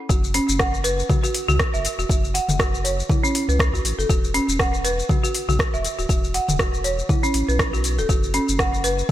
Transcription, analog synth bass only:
0, 0, Header, 1, 2, 480
1, 0, Start_track
1, 0, Key_signature, 3, "minor"
1, 0, Tempo, 500000
1, 88, Time_signature, 4, 2, 24, 8
1, 8750, End_track
2, 0, Start_track
2, 0, Title_t, "Analog synth bass"
2, 0, Program_c, 0, 38
2, 92, Note_on_c, 0, 30, 105
2, 381, Note_off_c, 0, 30, 0
2, 471, Note_on_c, 0, 30, 98
2, 987, Note_off_c, 0, 30, 0
2, 1424, Note_on_c, 0, 37, 93
2, 1558, Note_off_c, 0, 37, 0
2, 1665, Note_on_c, 0, 30, 82
2, 1799, Note_off_c, 0, 30, 0
2, 1906, Note_on_c, 0, 28, 102
2, 1969, Note_off_c, 0, 28, 0
2, 2011, Note_on_c, 0, 30, 106
2, 2301, Note_off_c, 0, 30, 0
2, 2385, Note_on_c, 0, 30, 96
2, 2904, Note_off_c, 0, 30, 0
2, 3345, Note_on_c, 0, 37, 85
2, 3582, Note_off_c, 0, 37, 0
2, 3588, Note_on_c, 0, 37, 93
2, 3650, Note_off_c, 0, 37, 0
2, 3691, Note_on_c, 0, 33, 90
2, 3772, Note_off_c, 0, 33, 0
2, 3826, Note_on_c, 0, 30, 99
2, 3889, Note_off_c, 0, 30, 0
2, 3931, Note_on_c, 0, 28, 104
2, 4221, Note_off_c, 0, 28, 0
2, 4305, Note_on_c, 0, 28, 100
2, 4824, Note_off_c, 0, 28, 0
2, 5265, Note_on_c, 0, 35, 93
2, 5399, Note_off_c, 0, 35, 0
2, 5507, Note_on_c, 0, 28, 82
2, 5640, Note_off_c, 0, 28, 0
2, 5748, Note_on_c, 0, 26, 103
2, 5810, Note_off_c, 0, 26, 0
2, 5849, Note_on_c, 0, 28, 104
2, 6140, Note_off_c, 0, 28, 0
2, 6228, Note_on_c, 0, 28, 96
2, 6745, Note_off_c, 0, 28, 0
2, 7052, Note_on_c, 0, 33, 93
2, 7133, Note_off_c, 0, 33, 0
2, 7185, Note_on_c, 0, 35, 103
2, 7668, Note_on_c, 0, 26, 90
2, 7683, Note_off_c, 0, 35, 0
2, 7730, Note_off_c, 0, 26, 0
2, 7768, Note_on_c, 0, 30, 102
2, 8059, Note_off_c, 0, 30, 0
2, 8150, Note_on_c, 0, 30, 100
2, 8666, Note_off_c, 0, 30, 0
2, 8750, End_track
0, 0, End_of_file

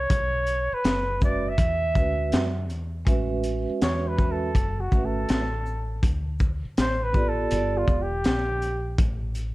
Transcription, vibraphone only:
0, 0, Header, 1, 2, 480
1, 0, Start_track
1, 0, Key_signature, 3, "major"
1, 0, Tempo, 740741
1, 67, Time_signature, 4, 2, 24, 8
1, 6185, End_track
2, 0, Start_track
2, 0, Title_t, "Vibraphone"
2, 0, Program_c, 0, 11
2, 778, Note_on_c, 0, 56, 62
2, 783, Note_on_c, 0, 61, 53
2, 790, Note_on_c, 0, 66, 51
2, 793, Note_on_c, 0, 71, 57
2, 799, Note_on_c, 0, 76, 66
2, 974, Note_off_c, 0, 56, 0
2, 976, Note_off_c, 0, 61, 0
2, 980, Note_off_c, 0, 66, 0
2, 981, Note_off_c, 0, 71, 0
2, 984, Note_off_c, 0, 76, 0
2, 1257, Note_on_c, 0, 56, 56
2, 1261, Note_on_c, 0, 61, 53
2, 1269, Note_on_c, 0, 66, 56
2, 1273, Note_on_c, 0, 71, 56
2, 1279, Note_on_c, 0, 76, 66
2, 1566, Note_off_c, 0, 56, 0
2, 1567, Note_off_c, 0, 61, 0
2, 1572, Note_off_c, 0, 66, 0
2, 1573, Note_off_c, 0, 71, 0
2, 1576, Note_off_c, 0, 76, 0
2, 1976, Note_on_c, 0, 56, 85
2, 1980, Note_on_c, 0, 61, 77
2, 1985, Note_on_c, 0, 66, 73
2, 1990, Note_on_c, 0, 71, 72
2, 1996, Note_on_c, 0, 76, 85
2, 2669, Note_off_c, 0, 56, 0
2, 2671, Note_off_c, 0, 61, 0
2, 2673, Note_off_c, 0, 66, 0
2, 2676, Note_off_c, 0, 71, 0
2, 2679, Note_off_c, 0, 76, 0
2, 2699, Note_on_c, 0, 56, 65
2, 2705, Note_on_c, 0, 61, 55
2, 2711, Note_on_c, 0, 66, 61
2, 2717, Note_on_c, 0, 71, 58
2, 2722, Note_on_c, 0, 76, 71
2, 2894, Note_off_c, 0, 56, 0
2, 2897, Note_off_c, 0, 61, 0
2, 2900, Note_off_c, 0, 66, 0
2, 2903, Note_off_c, 0, 71, 0
2, 2906, Note_off_c, 0, 76, 0
2, 3181, Note_on_c, 0, 57, 58
2, 3186, Note_on_c, 0, 61, 57
2, 3192, Note_on_c, 0, 66, 52
2, 3199, Note_on_c, 0, 71, 55
2, 3203, Note_on_c, 0, 76, 67
2, 3487, Note_off_c, 0, 57, 0
2, 3490, Note_off_c, 0, 61, 0
2, 3493, Note_off_c, 0, 66, 0
2, 3496, Note_off_c, 0, 71, 0
2, 3498, Note_off_c, 0, 76, 0
2, 4618, Note_on_c, 0, 59, 69
2, 4621, Note_on_c, 0, 65, 66
2, 4631, Note_on_c, 0, 67, 66
2, 4635, Note_on_c, 0, 69, 68
2, 4638, Note_on_c, 0, 74, 74
2, 4850, Note_off_c, 0, 59, 0
2, 4855, Note_off_c, 0, 65, 0
2, 4858, Note_on_c, 0, 59, 65
2, 4862, Note_off_c, 0, 67, 0
2, 4863, Note_on_c, 0, 65, 55
2, 4868, Note_off_c, 0, 69, 0
2, 4870, Note_on_c, 0, 67, 52
2, 4872, Note_off_c, 0, 74, 0
2, 4876, Note_on_c, 0, 69, 56
2, 4880, Note_on_c, 0, 74, 69
2, 5166, Note_off_c, 0, 59, 0
2, 5168, Note_off_c, 0, 65, 0
2, 5172, Note_off_c, 0, 67, 0
2, 5175, Note_off_c, 0, 69, 0
2, 5177, Note_off_c, 0, 74, 0
2, 6185, End_track
0, 0, End_of_file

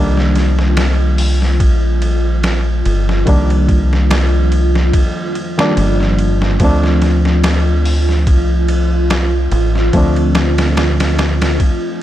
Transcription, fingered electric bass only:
0, 0, Header, 1, 2, 480
1, 0, Start_track
1, 0, Tempo, 833333
1, 1881, Time_signature, 4, 2, 24, 8
1, 6926, End_track
2, 0, Start_track
2, 0, Title_t, "Fingered electric bass"
2, 0, Program_c, 0, 33
2, 0, Note_on_c, 0, 36, 93
2, 925, Note_off_c, 0, 36, 0
2, 925, Note_on_c, 0, 34, 87
2, 1622, Note_off_c, 0, 34, 0
2, 1645, Note_on_c, 0, 31, 85
2, 1858, Note_off_c, 0, 31, 0
2, 1886, Note_on_c, 0, 36, 90
2, 2823, Note_off_c, 0, 36, 0
2, 3325, Note_on_c, 0, 31, 90
2, 3783, Note_off_c, 0, 31, 0
2, 3803, Note_on_c, 0, 38, 93
2, 4767, Note_off_c, 0, 38, 0
2, 4767, Note_on_c, 0, 36, 92
2, 5464, Note_off_c, 0, 36, 0
2, 5481, Note_on_c, 0, 33, 91
2, 5696, Note_off_c, 0, 33, 0
2, 5724, Note_on_c, 0, 38, 91
2, 6662, Note_off_c, 0, 38, 0
2, 6926, End_track
0, 0, End_of_file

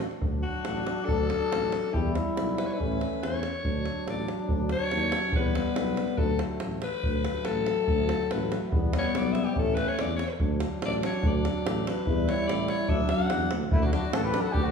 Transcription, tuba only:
0, 0, Header, 1, 2, 480
1, 0, Start_track
1, 0, Key_signature, 2, "major"
1, 0, Tempo, 426439
1, 236, Time_signature, 2, 2, 24, 8
1, 8875, Tempo, 416378
1, 16748, End_track
2, 0, Start_track
2, 0, Title_t, "Tuba"
2, 0, Program_c, 0, 58
2, 227, Note_on_c, 0, 38, 75
2, 496, Note_off_c, 0, 38, 0
2, 728, Note_on_c, 0, 33, 73
2, 992, Note_off_c, 0, 33, 0
2, 1210, Note_on_c, 0, 38, 84
2, 1474, Note_off_c, 0, 38, 0
2, 1694, Note_on_c, 0, 33, 69
2, 1958, Note_off_c, 0, 33, 0
2, 2176, Note_on_c, 0, 40, 94
2, 2440, Note_off_c, 0, 40, 0
2, 2661, Note_on_c, 0, 35, 68
2, 2924, Note_off_c, 0, 35, 0
2, 3147, Note_on_c, 0, 33, 83
2, 3409, Note_off_c, 0, 33, 0
2, 3630, Note_on_c, 0, 40, 70
2, 3891, Note_off_c, 0, 40, 0
2, 4099, Note_on_c, 0, 38, 79
2, 4362, Note_off_c, 0, 38, 0
2, 4574, Note_on_c, 0, 33, 68
2, 4839, Note_off_c, 0, 33, 0
2, 5052, Note_on_c, 0, 38, 83
2, 5317, Note_off_c, 0, 38, 0
2, 5530, Note_on_c, 0, 39, 73
2, 5795, Note_off_c, 0, 39, 0
2, 6009, Note_on_c, 0, 40, 79
2, 6274, Note_off_c, 0, 40, 0
2, 6493, Note_on_c, 0, 35, 75
2, 6756, Note_off_c, 0, 35, 0
2, 6962, Note_on_c, 0, 38, 86
2, 7226, Note_off_c, 0, 38, 0
2, 7446, Note_on_c, 0, 33, 75
2, 7708, Note_off_c, 0, 33, 0
2, 7923, Note_on_c, 0, 38, 85
2, 8185, Note_off_c, 0, 38, 0
2, 8404, Note_on_c, 0, 33, 72
2, 8664, Note_off_c, 0, 33, 0
2, 8876, Note_on_c, 0, 38, 85
2, 9142, Note_off_c, 0, 38, 0
2, 9369, Note_on_c, 0, 33, 92
2, 9633, Note_off_c, 0, 33, 0
2, 9839, Note_on_c, 0, 40, 83
2, 10107, Note_off_c, 0, 40, 0
2, 10329, Note_on_c, 0, 35, 79
2, 10595, Note_off_c, 0, 35, 0
2, 10816, Note_on_c, 0, 33, 89
2, 11080, Note_off_c, 0, 33, 0
2, 11302, Note_on_c, 0, 40, 83
2, 11565, Note_off_c, 0, 40, 0
2, 11775, Note_on_c, 0, 38, 89
2, 12040, Note_off_c, 0, 38, 0
2, 12257, Note_on_c, 0, 33, 74
2, 12522, Note_off_c, 0, 33, 0
2, 12738, Note_on_c, 0, 38, 92
2, 13003, Note_off_c, 0, 38, 0
2, 13212, Note_on_c, 0, 33, 91
2, 13477, Note_off_c, 0, 33, 0
2, 13687, Note_on_c, 0, 40, 96
2, 13954, Note_off_c, 0, 40, 0
2, 14164, Note_on_c, 0, 33, 80
2, 14430, Note_off_c, 0, 33, 0
2, 14645, Note_on_c, 0, 38, 91
2, 14779, Note_off_c, 0, 38, 0
2, 14884, Note_on_c, 0, 42, 78
2, 15102, Note_off_c, 0, 42, 0
2, 15127, Note_on_c, 0, 40, 90
2, 15343, Note_off_c, 0, 40, 0
2, 15364, Note_on_c, 0, 38, 86
2, 15581, Note_off_c, 0, 38, 0
2, 15597, Note_on_c, 0, 38, 92
2, 15861, Note_off_c, 0, 38, 0
2, 16081, Note_on_c, 0, 33, 98
2, 16342, Note_off_c, 0, 33, 0
2, 16557, Note_on_c, 0, 38, 100
2, 16748, Note_off_c, 0, 38, 0
2, 16748, End_track
0, 0, End_of_file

